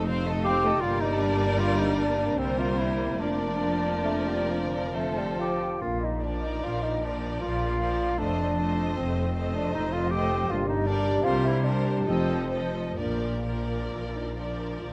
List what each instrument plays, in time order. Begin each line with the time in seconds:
Already playing: double bass section F1, cello section F2, harp F2 C3 F3 A3 D#4, french horn section A3 D#4
0.06 harp A#2, viola section C4, violin section F5
0.10 violin section C5
0.25 viola section A3, violin section A4 D#5
0.33 harp C3
0.44 viola section C4, clarinet G4, violin section C5 F5, flute section G5
0.58 harp D#4
0.63 viola section A3, violin section A4 D#5
0.81 double bass section G1, cello section G2, harp G2, viola section G3, french horn section A#3 D4, clarinet F4, violin section A#4 D5, flute section F5
1.01 clarinet D#4, flute section D#5
1.08 harp G3
1.19 clarinet D4, flute section D5
1.34 harp D4
1.58 harp D#4, clarinet F4, flute section F5
1.78 clarinet D#4, flute section D#5
1.86 harp D4
1.97 clarinet D4, flute section D5
2.12 harp D3
2.37 double bass section C2, harp C3, cello section C3, viola section G3, french horn section C4, clarinet C4, flute section C5, violin section C5
2.41 violin section A#4
2.58 clarinet F4, flute section F5
2.66 harp C4
2.77 clarinet E4, flute section E5
2.92 harp C4 A#4
3.19 double bass section F1, cello section F2, harp F2, viola section F3, clarinet D4, french horn section D4, violin section A#4 D5, flute section D5
3.48 harp F3
4.04 bassoon A3
4.27 bassoon G3
4.34 harp A#3
4.50 bassoon F3
4.64 harp D3
4.93 harp F2, viola section F3, french horn section A3 C4, bassoon A3, violin section A4 C5
5.18 bassoon G3
5.23 harp F3
5.38 bassoon F3, clarinet G4, flute section G5
5.53 harp C4 A4
5.80 double bass section A#1, harp A#2, cello section A#2, french horn section A#3 D4, clarinet F4, flute section F5
6.00 flute section D#5
6.05 clarinet D#4
6.09 harp F3
6.22 viola section F3, clarinet D4, violin section A#4 D5, flute section D5
6.37 harp D4
6.42 flute section D#5
6.46 clarinet D#4
6.63 double bass section A#1, cello section A#2, harp D#4, clarinet F4, flute section F5
6.83 clarinet D#4, flute section D#5
6.90 harp D4
7.02 viola section F3, clarinet D4, violin section A#4 D5, flute section D5
7.16 harp A#3
7.41 double bass section A#1, cello section A#2, harp A3, clarinet F4, flute section F5
7.68 harp A#3
7.78 viola section F3, violin section A#4 D5
7.93 harp D4
8.17 double bass section F1, cello section F2, harp F2, viola section A3, french horn section A3 D#4, clarinet D4, violin section C5 D#5
8.21 flute section D5
8.46 harp F3
8.56 viola section A3, violin section C5 D#5
8.96 double bass section F1, cello section F2, clarinet C4, harp F4, flute section C5
9.21 harp D#4
9.33 viola section A3, violin section C5 D#5
9.47 harp C3
9.54 clarinet D4, flute section D5
9.72 double bass section F1, cello section F2, harp A#2, clarinet D#4, flute section D#5
9.92 clarinet F4, flute section F5
9.99 harp C3
10.08 viola section A3, clarinet G4, flute section G5
10.13 violin section C5 D#5
10.25 harp D#4
10.48 double bass section G1, cello section G2, harp G2, french horn section A#3 D4, clarinet F4, flute section F5
10.67 clarinet D#4, flute section D#5
10.75 harp A#3
10.85 viola section G3, clarinet D4, violin section A#4 D5, flute section D5
10.99 harp D4 G4
11.23 double bass section C2, cello section C3, harp C3, viola section G3, french horn section A#3 C4, clarinet F4, violin section A#4 C5, flute section F5
11.44 clarinet E4, flute section E5
11.52 harp A#3
11.64 viola section G3, clarinet D4, violin section A#4 C5, flute section D5
11.79 harp C4 G4
12.06 double bass section F1, cello section F2, harp F2, viola section F3, french horn section A3 D#4, clarinet C4, violin section A4 D#5, flute section C5
12.37 harp A3
12.51 viola section F3, violin section A4 D#5
12.66 harp D#4 F4
12.96 double bass section A#1, cello section A#2, harp A#2, viola section F3, french horn section A#3 D4, clarinet A#3, violin section A#4 D5, flute section A#4
13.30 harp A#3
13.46 viola section F3, violin section A#4 D5
13.62 harp D4
13.93 double bass section A#1, cello section A#2, harp D#4, french horn section F4
14.14 french horn section D#4
14.24 harp D4
14.37 viola section F3, french horn section D4, violin section A#4 D5
14.53 harp F3
14.80 double bass section A#1, cello section A#2, harp D#3, french horn section F4